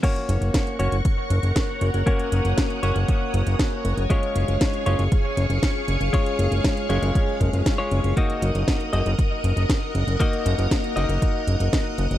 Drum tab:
CC |x---------------|----------------|----------------|----------------|
HH |xxxxxxxxx-xxx-xx|xxxxxxxxx-xxx-xx|xxxxxxxxx-xxx-xx|xxxxxxxxx-xxx-xx|
SD |----o-------o---|----o-------o---|----o-------o---|----o-------o---|
BD |o---o---o---o---|o---o---o---o---|o---o---o---o---|o---o---o-o-o---|

CC |----------------|----------------|
HH |xxxxxxxxx-xxx-xx|xxxxxxxxx-xxx-xx|
SD |----o-------o---|----o-------o---|
BD |o---o---o---o---|o---o---o---o---|